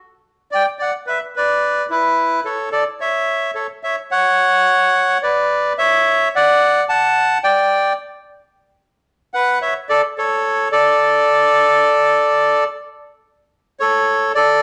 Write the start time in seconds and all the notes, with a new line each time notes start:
0.51 D5 G5
0.79 D5 F#5
1.07 B4 E5
1.36 B4 D5
1.90 E4 B4
2.45 A4 C#5
2.72 A4 D5
3.00 C#5 E5
3.55 A4 C#5
3.83 C#5 E5
4.11 C#5 F#5
5.23 B4 D5
5.78 C#5 E5
6.35 D5 F#5
6.89 F#5 A5
7.43 D5 G5
9.34 B4 F#5
9.62 C#5 E5
9.89 A4 D5
10.18 A4 C#5
10.72 A4 D5
13.80 A4 C#5
14.35 A4 D5